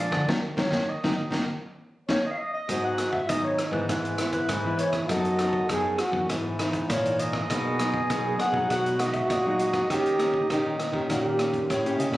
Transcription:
Already playing: F3 G#3 D4 F4 D5
0.11 D3, kick, cross-stick
0.29 D#3 F#3 A#3 D#4 A#4, kick, snare
0.57 D#3 F#3 A#3 D#4 C#5, kick, snare
0.70 D#3 F#3 A#3 D#4, kick, snare
0.89 D#5
1.04 D#3 F#3 A#3 D#4, kick, snare
1.31 D#3 F#3 A#3 D#4, kick, snare
2.09 D#3 F#3 A#3 D#4 C#5, kick, snare
2.25 D#5
2.31 F5
2.38 D#5
2.53 D#5
2.69 G#2 F#3 B3 D#4 F#4, kick, cross-stick, closed hi-hat
2.84 F#5
2.98 cross-stick, closed hi-hat
3.13 E5, kick
3.29 G#2 D#3 F#3 B3 D#4 D#5, kick, cross-stick, closed hi-hat
3.44 C#5
3.58 cross-stick, closed hi-hat
3.71 G#2 E3 B3 E4 B4, kick
3.89 G#2 E4 B4, kick, cross-stick, closed hi-hat
4.05 closed hi-hat
4.18 E3 B3 E4, cross-stick, closed hi-hat
4.32 B4, kick, closed hi-hat
4.49 G#2, kick, cross-stick, closed hi-hat
4.65 E3 B3 E4
4.79 C#5, closed hi-hat
4.93 kick, cross-stick, closed hi-hat
5.09 F#2 F#3 B3 D#4 F#4 A4 D#5, kick, cross-stick, closed hi-hat
5.25 closed hi-hat
5.39 B3 D#4 A4, cross-stick, closed hi-hat
5.53 kick
5.69 F#2 F#3 B3 D#4 G#4 A4, kick, cross-stick, closed hi-hat
5.98 F#4, cross-stick, closed hi-hat
6.11 F#2 E3 B3 D#4, kick
6.29 G#2 E4, kick, cross-stick, closed hi-hat
6.59 E3 B3 D#4, cross-stick, closed hi-hat
6.73 kick, closed hi-hat
6.90 G#2 A#2 C#5, kick, cross-stick, closed hi-hat
7.05 E3 D#4, closed hi-hat
7.19 D#5, closed hi-hat
7.33 kick, cross-stick
7.50 B2 F#3 A#3 D#4 G#4, kick, cross-stick, closed hi-hat
7.79 F#3 A#3 D#4, cross-stick, closed hi-hat
7.94 kick
8.10 F#2 B2 F#3 A#3 D#4, kick, cross-stick, closed hi-hat
8.39 F#5, cross-stick, closed hi-hat
8.52 B2 F#3 G#3 D#4, kick
8.70 B2 F#4 F#5, kick, cross-stick, closed hi-hat
8.86 closed hi-hat
8.99 F#3 G#3 D#4 D#5, cross-stick, closed hi-hat
9.14 E5, kick, closed hi-hat
9.30 A#2 D#5, kick, cross-stick, closed hi-hat
9.46 F#3 G#3 D#4
9.59 D#5, closed hi-hat
9.73 kick, cross-stick, closed hi-hat
9.90 D#3 A#3 C#4 G4, kick, cross-stick, closed hi-hat
10.06 closed hi-hat
10.19 A#3 C#4 G4, cross-stick, closed hi-hat
10.34 kick
10.50 A#2 D#3 A#3 C#4 D#4 G4, kick, cross-stick, closed hi-hat
10.79 cross-stick, closed hi-hat
10.92 D#3 A#3 C#4 G4, kick
11.10 A#2 D#3 G4, kick, cross-stick, closed hi-hat
11.39 A#3 C#4 G4, cross-stick, closed hi-hat
11.53 kick, closed hi-hat
11.70 A2 C#5, kick, cross-stick, closed hi-hat
11.85 A#3 C#4 G4, closed hi-hat
11.99 C#3 D#5, closed hi-hat
12.12 A#2, kick, cross-stick

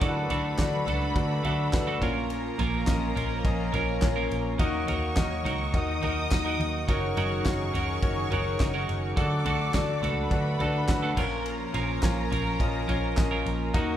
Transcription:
0.01 D2 D3 F#3 A3 D4 E4 F#4 A4 B4 D5 B5, kick, ride
0.09 F#4
0.30 D2 D3 A3 D4 F#4 A4, floor tom, ride
0.58 D2 D4 F#4 A4 D5, kick, snare, clap, ride
0.86 C#2 A3 D4 F#4 A4, floor tom, ride
1.16 D2 D4 F#4 A4 D5, kick, ride
1.43 D2 A3 D4 F#4 A4 E5, floor tom, ride
1.73 D2 D4 F#4 A4 B4, kick, snare, clap, ride
1.87 D3 A3 D4 F#4 A4
2.01 A#1 A#2 F3 A#3 C#4 F4 A#4 C#5 A#5, kick, ride
2.30 ride
2.58 A#1 A#2 A#3 C#4 F4 A#4, floor tom, ride
2.87 A#1 C#4 F4 A#4 D#5, kick, snare, clap, ride
3.15 A#1 A#3 C#4 F4 A#4, floor tom, ride
3.45 A#1 C#4 F4 A#4 D#5, kick, ride
3.72 A#1 A#3 C#4 F4 A#4 C#5, floor tom, ride
4.02 A#1 C#4 F4 A#4 C#5, kick, snare, clap, ride
4.16 A#2 A#3 C#4 F4 A#4
4.31 A#1, ride
4.58 D#2 D#3 F#3 D#4 F#4 A#4 C#5 D#5 C#6, kick, ride
4.87 D#2 D#3 D#4 F#4 A#4, floor tom, ride
5.16 D#2 D#4 F#4 A#4 D#5, kick, snare, clap, ride
5.44 C#2 D#3 D#4 F#4 A#4, floor tom, ride
5.74 D#2 D#4 F#4 A#4 D#5 D#6, kick, ride
6.02 D#2 D#3 D#4 F#4 A#4 D#5, floor tom, ride
6.31 D#2 D#4 F#4 A#4 D#5, kick, snare, clap, ride
6.45 D#3 D#4 F#4 A#4
6.60 D#2, ride
6.88 F#1 D#3 F#3 C#4 D#4 F#4 G#4 A#4 C#5 C#6, kick, ride
7.16 F#1 D#3 F#3 C#4 F#4 A#4, ride
7.46 F#1 D#4 F#4 A#4 C#5, kick, snare, clap, ride
7.73 F1 D#3 C#4 F#4 A#4, floor tom, ride
8.02 F#1 D#4 F#4 A#4 C#5, kick, ride
8.31 F#1 D#3 C#4 D#4 F#4 A#4 C#5, floor tom, ride
8.60 F#1 D#4 F#4 A#4 D#5, kick, snare, clap, ride
8.74 D#3 F#3 C#4 F#4 A#4
8.89 F#1, ride
9.16 D2 D3 A3 D4 F#4 A4 D5 D6, kick, ride
9.45 D2 D3 A3 D4 F#4 A4, floor tom, ride
9.74 D2 D4 F#4 A4 D5, kick, snare, clap, ride
10.02 C#2 A3 D4 F#4 A4 B4 B5, floor tom, ride
10.31 D2 D4 F#4 A4 D5, kick, ride
10.59 D2 A3 D4 F#4 A4 D5, floor tom, ride
10.88 D2 D4 F#4 A4 B4, kick, snare, clap, ride
11.02 D3 A3 D4 F#4 A4
11.16 A#1 A#2 F3 A#3 C#4 F4 A#4 C#5 A#5, kick, crash
11.46 ride
11.74 A#1 A#2 F3 C#4 F4 A#4, ride
12.03 A#1 C#4 F4 A#4 C#5, kick, snare, clap, ride
12.31 A#1 F3 C#4 F4 A#4, floor tom, ride
12.60 A#1 C#4 F4 A#4 D#5, kick, ride
12.88 A#1 F3 C#4 F4 A#4 C#5, floor tom, ride
13.17 A#1 C#4 F4 A#4 D#5, kick, snare, clap, ride
13.31 A#2 F3 C#4 F4 A#4
13.46 A#1, ride
13.74 D#2 D#3 F#3 A#3 D#4 F#4 A#4 D#5 A#5, kick, ride

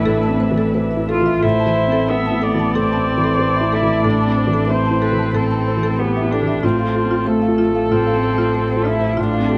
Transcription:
Already playing: A1 A2 E3 A3 C4 D4 E4 B4 E5
0.05 A2 A4
0.23 A5
0.29 C4
0.40 C5
0.51 E3
0.58 A4
0.74 B4 C5
0.91 E5
0.97 E4
1.08 F4 A4
1.22 E3
1.26 E5
1.43 A1 A2 A3 E4 A4 C5
1.60 A5
1.66 E3
1.77 C5
1.87 C4
1.92 A4
2.09 B3 B4 E5
2.26 A5
2.31 E4
2.42 A4 D5
2.55 E3
2.59 A5
2.74 A2 C4 A4
2.93 C4 A5
3.09 C5
3.18 E3
3.24 A4
3.39 B4 C5
3.56 E5
3.61 E4
3.72 E4 A4
3.83 E3
3.87 E5
4.04 A2 D4 A4
4.21 A5
4.26 C4
4.38 C5
4.47 E3
4.53 A4
4.67 C4 B4 C5 E5
4.85 A5
4.91 E4
5.02 A4 B4
5.12 E3
5.18 A5
5.33 A2 C4 A4
5.51 A5
5.56 C4
5.68 C5
5.77 E3
5.83 A4
5.99 B3 G4 B4 C5
6.17 E5
6.22 E4
6.31 D4 A4
6.43 E3
6.48 E5
6.62 A1 A2 F3 A3 C4 F4 A4
6.79 F5
6.84 A3
6.94 A4
7.04 C4
7.11 F4
7.26 A3 A4 C5
7.42 F5
7.48 F4
7.58 F4
7.69 A3
7.75 F5
7.91 A2 C4 F4
8.07 F5
8.12 C4
8.23 A4
8.35 A3 F4
8.54 A4
8.70 C5
8.76 F4
8.85 E4 F4
8.96 A3
9.01 C5
9.17 A2 D4 F4
9.33 F5
9.39 C4
9.49 G4 A4

